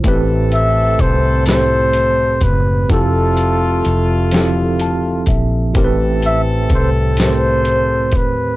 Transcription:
<<
  \new Staff \with { instrumentName = "Flugelhorn" } { \time 6/8 \key a \minor \tempo 4. = 42 r8 e''8 c''8 c''4 b'8 | a'2 r4 | r8 e''8 c''8 c''4 b'8 | }
  \new Staff \with { instrumentName = "Tine electric piano" } { \time 6/8 \key a \minor << { r2. | r2 a''8 e''8 | r2. | } \\ { <a, a c' g' b'>4 r8 <a, a c' g' c''>4 r8 | <f c' e' g' a'>4 r8 <f c' e' g' a'>4 r8 | <a, a c' g' bes' b'>4 r8 <a, a c' g' bes' c''>4 r8 | } >> }
  \new Staff \with { instrumentName = "Horn section" } { \time 6/8 \key a \minor <e c' a'>2~ <e c' a'>8 r8 | <c a f'>2~ <c a f'>8 r8 | <e c' a'>2~ <e c' a'>8 r8 | }
  \new Staff \with { instrumentName = "Fingered electric bass" } { \clef bass \time 6/8 \key a \minor a,,4 c,4. fis,,8 | f,,4 f,,4. bes,,8 | a,,4 c,4. dis,8 | }
  \new DrumStaff \with { instrumentName = "Drums" } \drummode { \time 6/8 <hh bd>8 hh8 <hh bd>8 <hh sn>8 hh8 <hh bd>8 | <hh bd>8 hh8 hh8 <hh sn>8 hh8 <hh bd>8 | <hh bd>8 hh8 <hh bd>8 <hh sn>8 hh8 <hh bd>8 | }
>>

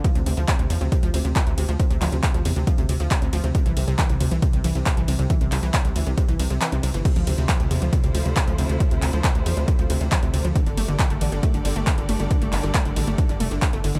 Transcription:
<<
  \new Staff \with { instrumentName = "String section" } { \time 4/4 \key d \minor \tempo 4 = 137 r1 | r1 | r1 | r1 |
<d a e' f' c''>1~ | <d a e' f' c''>1 | <g g' a' bes' d''>1~ | <g g' a' bes' d''>1 | }
  \new Staff \with { instrumentName = "Synth arpeggio sound" } { \clef bass \time 4/4 \key d \minor f16 c16 c16 f16 c16 c16 f16 c16 c16 f16 c16 c16 f16 c16 c16 f16 | c16 c16 f16 c16 c16 f16 c16 c16 f16 c16 c16 f16 c16 c16 f16 c16 | c16 e16 c16 c16 e16 c16 c16 e16 c16 c16 e16 c16 r16 e16 c16 c16 | e16 c16 c16 e16 c16 c16 e16 c16 c16 e16 c16 c16 e16 c16 c16 e16 |
c16 f16 c16 c16 f16 c16 c16 f16 c16 c16 f16 c16 c16 f16 c16 c16 | f16 c16 c16 f16 c16 c16 f16 c16 c16 f16 c16 c16 f16 c16 c16 f16 | d16 d16 a16 d16 r16 a16 d16 d16 a16 d16 d16 a16 d16 d16 a16 d16 | d16 a16 d16 d16 a16 d16 d16 a16 d16 d16 a16 d16 d16 a16 d16 d16 | }
  \new Staff \with { instrumentName = "Analog synth bass" } { \clef bass \time 4/4 \key d \minor r16 d,16 d,16 d,16 r16 d,16 e,16 d,16 r16 d,16 d,16 d,16 r16 d,16 d,16 d,16 | r16 d,16 d,16 d,16 r16 d,16 e,16 d,16 r16 d,16 d,16 d,16 r16 d,16 d,16 d,16 | r16 c,16 c,16 c,16 r16 c,16 d,16 c,16 r16 c,16 c,16 c,16 r16 c,16 c,16 c,16 | r16 c,16 c,16 c,16 r16 c,16 d,16 c,16 r16 c,16 c,16 c,16 r16 c,16 c,16 g,,16 |
r16 d,16 d,16 d,16 r16 d,16 e,16 d,16 r16 d,16 d,16 d,16 r16 d,16 d,16 d,16 | r16 d,16 d,16 d,16 r16 d,16 e,16 d,16 r16 d,16 d,16 d,16 r16 d,16 d,16 d,16 | r16 g,,16 g,,16 g,,16 r16 g,,16 a,,16 g,,16 r16 g,,16 g,,16 g,,16 r16 g,,16 g,,16 g,,16 | r16 g,,16 g,,16 g,,16 r16 g,,16 a,,16 g,,16 r16 g,,16 f,,16 g,,16 r16 g,,16 g,,16 g,,16 | }
  \new DrumStaff \with { instrumentName = "Drums" } \drummode { \time 4/4 <hh bd cymr>16 hh16 <hho cymr>16 hh16 <hc hh bd cymr>16 hh16 <hho cymr>16 hh16 <hh bd cymr>16 hh16 <hho cymr>16 hh16 <hc hh bd cymr>16 hh16 <hho cymr>16 hh16 | <hh bd cymr>16 hh16 <hc hho cymr>16 hh16 <hc hh bd cymr>16 hh16 <hho cymr>16 hh16 <hh bd cymr>16 hh16 <hho cymr>16 hh16 <hc hh bd cymr>16 hh16 <hho cymr>16 hh16 | <hh bd cymr>16 hh16 <hho cymr>16 hh16 <hc hh bd cymr>16 hh16 <hho cymr>16 hh16 <hh bd cymr>16 hh16 <hho cymr>16 hh16 <hc hh bd cymr>16 hh16 <hho cymr>16 hh16 | <hh bd cymr>16 hh16 <hc hho cymr>16 hh16 <hc hh bd cymr>16 hh16 <hho cymr>16 hh16 <hh bd cymr>16 hh16 <hho cymr>16 hh16 <hc hh cymr>16 hh16 <hho cymr>16 hh16 |
<cymc hh bd cymr>16 hh16 <hho cymr>16 hh16 <hc hh bd cymr>16 hh16 <hho cymr>16 hh16 <hh bd cymr>16 hh16 <hho cymr>16 hh16 <hc hh bd cymr>16 hh16 <hho cymr>16 hh16 | <hh bd cymr>16 hh16 <hc hho cymr>16 hh16 <hc hh bd cymr>16 hh16 <hho cymr>16 hh16 <hh bd cymr>16 hh16 <hho cymr>16 hh16 <hc hh bd cymr>16 hh16 <hho cymr>16 hh16 | <hh bd cymr>16 hh16 <hho cymr>16 hh16 <hc hh bd cymr>16 hh16 <hho cymr>16 hh16 <hh bd cymr>16 hh16 <hho cymr>16 hh16 <hc hh bd cymr>16 hh16 <hho cymr>16 hh16 | <hh bd cymr>16 hh16 <hc hho cymr>16 hh16 <hc hh bd cymr>16 hh16 <hho cymr>16 hh16 <hh bd cymr>16 hh16 <hho cymr>16 hh16 <hc hh bd cymr>16 hh16 <hho cymr>16 hh16 | }
>>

